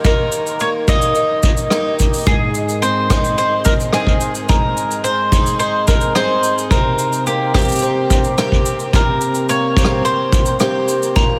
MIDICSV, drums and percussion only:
0, 0, Header, 1, 2, 480
1, 0, Start_track
1, 0, Tempo, 555556
1, 41, Time_signature, 4, 2, 24, 8
1, 9841, End_track
2, 0, Start_track
2, 0, Title_t, "Drums"
2, 39, Note_on_c, 9, 36, 93
2, 40, Note_on_c, 9, 69, 44
2, 125, Note_off_c, 9, 36, 0
2, 127, Note_off_c, 9, 69, 0
2, 277, Note_on_c, 9, 69, 74
2, 364, Note_off_c, 9, 69, 0
2, 403, Note_on_c, 9, 69, 54
2, 489, Note_off_c, 9, 69, 0
2, 516, Note_on_c, 9, 69, 44
2, 602, Note_off_c, 9, 69, 0
2, 759, Note_on_c, 9, 36, 106
2, 760, Note_on_c, 9, 69, 78
2, 846, Note_off_c, 9, 36, 0
2, 847, Note_off_c, 9, 69, 0
2, 879, Note_on_c, 9, 69, 61
2, 965, Note_off_c, 9, 69, 0
2, 993, Note_on_c, 9, 69, 48
2, 1080, Note_off_c, 9, 69, 0
2, 1235, Note_on_c, 9, 69, 80
2, 1238, Note_on_c, 9, 36, 87
2, 1321, Note_off_c, 9, 69, 0
2, 1324, Note_off_c, 9, 36, 0
2, 1357, Note_on_c, 9, 69, 60
2, 1443, Note_off_c, 9, 69, 0
2, 1473, Note_on_c, 9, 37, 64
2, 1481, Note_on_c, 9, 69, 44
2, 1559, Note_off_c, 9, 37, 0
2, 1567, Note_off_c, 9, 69, 0
2, 1721, Note_on_c, 9, 69, 84
2, 1726, Note_on_c, 9, 36, 57
2, 1808, Note_off_c, 9, 69, 0
2, 1813, Note_off_c, 9, 36, 0
2, 1845, Note_on_c, 9, 69, 48
2, 1863, Note_off_c, 9, 69, 0
2, 1863, Note_on_c, 9, 69, 38
2, 1883, Note_off_c, 9, 69, 0
2, 1883, Note_on_c, 9, 69, 33
2, 1904, Note_off_c, 9, 69, 0
2, 1904, Note_on_c, 9, 69, 26
2, 1925, Note_off_c, 9, 69, 0
2, 1925, Note_on_c, 9, 69, 21
2, 1944, Note_off_c, 9, 69, 0
2, 1944, Note_on_c, 9, 69, 18
2, 1959, Note_off_c, 9, 69, 0
2, 1959, Note_on_c, 9, 36, 117
2, 1959, Note_on_c, 9, 69, 47
2, 2045, Note_off_c, 9, 69, 0
2, 2046, Note_off_c, 9, 36, 0
2, 2199, Note_on_c, 9, 69, 71
2, 2286, Note_off_c, 9, 69, 0
2, 2323, Note_on_c, 9, 69, 54
2, 2410, Note_off_c, 9, 69, 0
2, 2444, Note_on_c, 9, 69, 52
2, 2531, Note_off_c, 9, 69, 0
2, 2680, Note_on_c, 9, 36, 93
2, 2681, Note_on_c, 9, 37, 71
2, 2682, Note_on_c, 9, 69, 83
2, 2767, Note_off_c, 9, 36, 0
2, 2768, Note_off_c, 9, 37, 0
2, 2769, Note_off_c, 9, 69, 0
2, 2803, Note_on_c, 9, 69, 46
2, 2889, Note_off_c, 9, 69, 0
2, 2921, Note_on_c, 9, 69, 43
2, 3007, Note_off_c, 9, 69, 0
2, 3152, Note_on_c, 9, 69, 85
2, 3161, Note_on_c, 9, 36, 97
2, 3239, Note_off_c, 9, 69, 0
2, 3247, Note_off_c, 9, 36, 0
2, 3284, Note_on_c, 9, 69, 55
2, 3370, Note_off_c, 9, 69, 0
2, 3392, Note_on_c, 9, 37, 66
2, 3400, Note_on_c, 9, 69, 45
2, 3478, Note_off_c, 9, 37, 0
2, 3486, Note_off_c, 9, 69, 0
2, 3514, Note_on_c, 9, 36, 59
2, 3600, Note_off_c, 9, 36, 0
2, 3634, Note_on_c, 9, 69, 72
2, 3720, Note_off_c, 9, 69, 0
2, 3756, Note_on_c, 9, 69, 47
2, 3843, Note_off_c, 9, 69, 0
2, 3878, Note_on_c, 9, 69, 46
2, 3883, Note_on_c, 9, 36, 100
2, 3964, Note_off_c, 9, 69, 0
2, 3969, Note_off_c, 9, 36, 0
2, 4124, Note_on_c, 9, 69, 72
2, 4210, Note_off_c, 9, 69, 0
2, 4244, Note_on_c, 9, 69, 54
2, 4330, Note_off_c, 9, 69, 0
2, 4360, Note_on_c, 9, 69, 47
2, 4447, Note_off_c, 9, 69, 0
2, 4597, Note_on_c, 9, 36, 86
2, 4603, Note_on_c, 9, 69, 77
2, 4684, Note_off_c, 9, 36, 0
2, 4689, Note_off_c, 9, 69, 0
2, 4719, Note_on_c, 9, 69, 59
2, 4805, Note_off_c, 9, 69, 0
2, 4836, Note_on_c, 9, 69, 41
2, 4922, Note_off_c, 9, 69, 0
2, 5076, Note_on_c, 9, 69, 83
2, 5080, Note_on_c, 9, 36, 93
2, 5162, Note_off_c, 9, 69, 0
2, 5167, Note_off_c, 9, 36, 0
2, 5191, Note_on_c, 9, 69, 52
2, 5277, Note_off_c, 9, 69, 0
2, 5315, Note_on_c, 9, 37, 68
2, 5319, Note_on_c, 9, 69, 47
2, 5401, Note_off_c, 9, 37, 0
2, 5405, Note_off_c, 9, 69, 0
2, 5559, Note_on_c, 9, 69, 82
2, 5645, Note_off_c, 9, 69, 0
2, 5688, Note_on_c, 9, 69, 51
2, 5774, Note_off_c, 9, 69, 0
2, 5796, Note_on_c, 9, 36, 105
2, 5799, Note_on_c, 9, 69, 42
2, 5882, Note_off_c, 9, 36, 0
2, 5885, Note_off_c, 9, 69, 0
2, 6036, Note_on_c, 9, 69, 67
2, 6123, Note_off_c, 9, 69, 0
2, 6158, Note_on_c, 9, 69, 57
2, 6244, Note_off_c, 9, 69, 0
2, 6279, Note_on_c, 9, 69, 48
2, 6365, Note_off_c, 9, 69, 0
2, 6519, Note_on_c, 9, 36, 95
2, 6519, Note_on_c, 9, 37, 76
2, 6521, Note_on_c, 9, 69, 36
2, 6549, Note_off_c, 9, 69, 0
2, 6549, Note_on_c, 9, 69, 40
2, 6577, Note_off_c, 9, 69, 0
2, 6577, Note_on_c, 9, 69, 47
2, 6605, Note_off_c, 9, 36, 0
2, 6605, Note_off_c, 9, 37, 0
2, 6606, Note_off_c, 9, 69, 0
2, 6606, Note_on_c, 9, 69, 50
2, 6639, Note_off_c, 9, 69, 0
2, 6639, Note_on_c, 9, 69, 55
2, 6670, Note_off_c, 9, 69, 0
2, 6670, Note_on_c, 9, 69, 60
2, 6699, Note_off_c, 9, 69, 0
2, 6699, Note_on_c, 9, 69, 61
2, 6728, Note_off_c, 9, 69, 0
2, 6728, Note_on_c, 9, 69, 74
2, 6759, Note_off_c, 9, 69, 0
2, 6759, Note_on_c, 9, 69, 57
2, 6845, Note_off_c, 9, 69, 0
2, 7002, Note_on_c, 9, 36, 85
2, 7003, Note_on_c, 9, 69, 79
2, 7088, Note_off_c, 9, 36, 0
2, 7090, Note_off_c, 9, 69, 0
2, 7120, Note_on_c, 9, 69, 49
2, 7206, Note_off_c, 9, 69, 0
2, 7240, Note_on_c, 9, 37, 70
2, 7240, Note_on_c, 9, 69, 47
2, 7326, Note_off_c, 9, 37, 0
2, 7327, Note_off_c, 9, 69, 0
2, 7362, Note_on_c, 9, 36, 58
2, 7448, Note_off_c, 9, 36, 0
2, 7480, Note_on_c, 9, 69, 76
2, 7567, Note_off_c, 9, 69, 0
2, 7599, Note_on_c, 9, 69, 46
2, 7685, Note_off_c, 9, 69, 0
2, 7719, Note_on_c, 9, 36, 89
2, 7725, Note_on_c, 9, 69, 47
2, 7805, Note_off_c, 9, 36, 0
2, 7811, Note_off_c, 9, 69, 0
2, 7959, Note_on_c, 9, 69, 75
2, 8045, Note_off_c, 9, 69, 0
2, 8075, Note_on_c, 9, 69, 53
2, 8161, Note_off_c, 9, 69, 0
2, 8199, Note_on_c, 9, 69, 51
2, 8286, Note_off_c, 9, 69, 0
2, 8438, Note_on_c, 9, 36, 99
2, 8447, Note_on_c, 9, 69, 73
2, 8504, Note_on_c, 9, 37, 70
2, 8524, Note_off_c, 9, 36, 0
2, 8533, Note_off_c, 9, 69, 0
2, 8590, Note_off_c, 9, 37, 0
2, 8685, Note_on_c, 9, 69, 43
2, 8771, Note_off_c, 9, 69, 0
2, 8921, Note_on_c, 9, 36, 104
2, 8925, Note_on_c, 9, 69, 85
2, 9007, Note_off_c, 9, 36, 0
2, 9011, Note_off_c, 9, 69, 0
2, 9034, Note_on_c, 9, 69, 58
2, 9120, Note_off_c, 9, 69, 0
2, 9155, Note_on_c, 9, 69, 45
2, 9160, Note_on_c, 9, 37, 62
2, 9241, Note_off_c, 9, 69, 0
2, 9246, Note_off_c, 9, 37, 0
2, 9403, Note_on_c, 9, 69, 70
2, 9489, Note_off_c, 9, 69, 0
2, 9527, Note_on_c, 9, 69, 51
2, 9614, Note_off_c, 9, 69, 0
2, 9641, Note_on_c, 9, 69, 45
2, 9643, Note_on_c, 9, 36, 101
2, 9727, Note_off_c, 9, 69, 0
2, 9730, Note_off_c, 9, 36, 0
2, 9841, End_track
0, 0, End_of_file